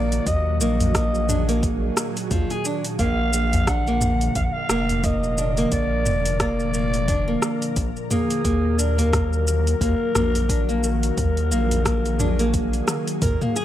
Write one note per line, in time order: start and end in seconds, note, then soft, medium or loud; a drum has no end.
0.00 0.20 A#1 medium
0.00 8.41 A#2 medium
0.00 2.95 D#3 medium
0.00 2.95 F#3 medium
0.00 0.44 A#3 loud
0.00 2.95 F#4 medium
0.00 0.22 D5 loud
0.00 0.23 A#5 medium
0.12 open hi-hat soft
0.12 shaker soft
0.26 0.62 D#2 loud
0.26 2.97 G#4 loud
0.26 0.58 D#5 loud
0.26 kick loud
0.26 mid tom medium
0.26 open hi-hat soft
0.26 shaker soft
0.61 1.91 A#1 medium
0.61 0.93 A#3 loud
0.61 1.93 D#5 loud
0.61 shaker medium
0.80 open hi-hat soft
0.80 udu medium
0.80 shaker soft
0.95 1.27 A#3 medium
0.95 kick loud
0.95 cross-stick medium
0.95 open hi-hat medium
0.95 shaker soft
1.15 shaker soft
1.29 1.48 D4 medium
1.29 mid tom medium
1.29 shaker medium
1.49 2.15 A#3 loud
1.49 open hi-hat soft
1.49 shaker soft
1.63 kick loud
1.63 open hi-hat medium
1.63 shaker soft
1.97 cross-stick medium
1.97 shaker medium
2.17 open hi-hat soft
2.17 shaker soft
2.31 2.45 D#2 loud
2.31 2.49 F3 medium
2.31 kick loud
2.31 mid tom medium
2.31 open hi-hat medium
2.31 shaker soft
2.50 2.64 G#4 loud
2.50 open hi-hat soft
2.50 shaker soft
2.65 2.83 D4 medium
2.65 shaker medium
2.84 open hi-hat soft
2.84 shaker soft
2.99 4.29 A#1 loud
2.99 8.41 D3 medium
2.99 8.41 F3 medium
2.99 3.32 A#3 loud
2.99 11.14 A#4 loud
2.99 3.69 F5 loud
2.99 kick medium
2.99 mid tom medium
2.99 open hi-hat medium
2.99 shaker soft
3.33 3.66 A#3 medium
3.33 shaker medium
3.53 open hi-hat soft
3.53 udu loud
3.53 shaker soft
3.67 3.86 D4 medium
3.67 4.35 F#5 loud
3.67 kick loud
3.67 cross-stick medium
3.67 open hi-hat medium
3.67 shaker soft
3.87 4.54 A#3 loud
3.87 shaker soft
4.01 mid tom medium
4.01 shaker medium
4.21 open hi-hat soft
4.21 shaker soft
4.35 4.50 A#1 loud
4.35 4.45 F5 loud
4.35 kick loud
4.35 open hi-hat medium
4.35 udu loud
4.35 shaker soft
4.44 4.54 F#5 medium
4.52 5.06 F5 loud
4.69 5.66 F1 medium
4.69 5.03 A#3 loud
4.69 cross-stick medium
4.69 shaker medium
4.89 open hi-hat soft
4.89 udu medium
4.89 shaker soft
5.04 5.37 A#3 medium
5.04 5.74 D#5 loud
5.04 kick loud
5.04 mid tom medium
5.04 open hi-hat medium
5.04 shaker soft
5.24 shaker soft
5.38 5.57 D4 medium
5.38 shaker medium
5.57 6.24 A#3 loud
5.57 open hi-hat soft
5.57 shaker soft
5.72 6.07 A#1 loud
5.72 6.40 D5 loud
5.72 kick medium
5.72 open hi-hat medium
5.72 shaker soft
6.06 7.36 F1 medium
6.06 mid tom medium
6.06 shaker medium
6.25 open hi-hat soft
6.25 udu medium
6.25 shaker soft
6.40 6.73 A#3 loud
6.40 7.81 D5 loud
6.40 kick loud
6.40 cross-stick medium
6.40 open hi-hat medium
6.40 shaker soft
6.60 shaker soft
6.74 7.07 A#3 medium
6.74 shaker medium
6.94 open hi-hat soft
6.94 shaker soft
7.08 7.27 D4 medium
7.08 kick loud
7.08 mid tom medium
7.08 open hi-hat medium
7.08 shaker soft
7.28 7.94 A#3 loud
7.42 cross-stick medium
7.42 shaker medium
7.62 open hi-hat soft
7.62 shaker soft
7.76 7.91 A#1 medium
7.76 kick loud
7.76 open hi-hat medium
7.76 shaker soft
7.96 shaker soft
8.10 8.43 A#3 loud
8.10 8.80 G#4 loud
8.10 mid tom medium
8.10 shaker medium
8.30 open hi-hat soft
8.30 shaker soft
8.44 9.75 D#2 medium
8.44 13.65 D#3 medium
8.44 13.65 F#3 medium
8.44 8.77 A#3 medium
8.44 13.65 A#3 medium
8.44 13.65 F#4 medium
8.44 kick medium
8.44 open hi-hat medium
8.44 shaker soft
8.78 8.97 D4 medium
8.78 9.47 A#4 loud
8.78 shaker medium
8.98 9.65 A#3 loud
8.98 open hi-hat soft
8.98 udu medium
8.98 shaker soft
9.13 kick loud
9.13 cross-stick medium
9.13 mid tom medium
9.13 open hi-hat medium
9.13 shaker soft
9.33 shaker soft
9.47 10.80 A#4 loud
9.47 shaker medium
9.67 open hi-hat soft
9.67 shaker soft
9.81 9.95 D#2 loud
9.81 10.14 A#3 loud
9.81 kick loud
9.81 open hi-hat medium
9.81 udu medium
9.81 shaker soft
10.15 11.11 A#1 medium
10.15 10.48 A#3 medium
10.15 cross-stick medium
10.15 mid tom medium
10.15 shaker medium
10.35 open hi-hat soft
10.35 udu medium
10.35 shaker soft
10.49 10.68 D4 medium
10.49 kick loud
10.49 open hi-hat medium
10.49 shaker soft
10.69 11.35 A#3 loud
10.69 shaker soft
10.84 13.52 A#4 loud
10.84 shaker medium
11.03 open hi-hat soft
11.03 shaker soft
11.17 11.53 D#2 medium
11.17 13.65 G#4 loud
11.17 kick loud
11.17 mid tom medium
11.17 open hi-hat medium
11.17 shaker soft
11.37 open hi-hat soft
11.51 12.82 A#1 medium
11.51 11.84 A#3 loud
11.51 shaker medium
11.71 open hi-hat soft
11.71 udu loud
11.71 shaker soft
11.85 12.18 A#3 medium
11.85 kick loud
11.85 cross-stick medium
11.85 open hi-hat medium
11.85 shaker soft
12.06 open hi-hat soft
12.06 shaker soft
12.19 12.38 D4 medium
12.19 mid tom medium
12.19 shaker medium
12.39 13.06 A#3 loud
12.39 open hi-hat soft
12.39 shaker soft
12.54 kick loud
12.54 open hi-hat medium
12.54 shaker soft
12.73 open hi-hat soft
12.73 shaker soft
12.88 cross-stick medium
12.88 high tom medium
12.88 shaker medium
13.07 open hi-hat soft
13.07 shaker soft
13.22 13.36 D#2 medium
13.22 13.40 A#4 medium
13.22 kick loud
13.22 mid tom medium
13.22 open hi-hat medium
13.22 mid tom medium
13.22 shaker soft
13.41 13.55 A#3 loud
13.41 mid tom medium
13.41 shaker soft
13.56 13.65 G#4 loud
13.56 shaker medium